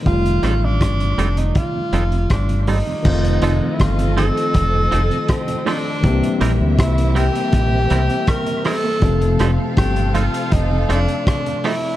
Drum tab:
CC |----------------|x---------------|----------------|----------------|
HH |xxx-xxxxx-xxxxo-|-xx-xxxxx-xxxxo-|xxx-xxxxx-xxxxo-|xxx-xxxxx-xxxxo-|
SD |--r-r-------r---|----r-------r-r-|----r-------r-r-|--r-r-------r-r-|
BD |o---o---o---o---|o---o---o---o---|o---o---o---o---|o---o---o---o---|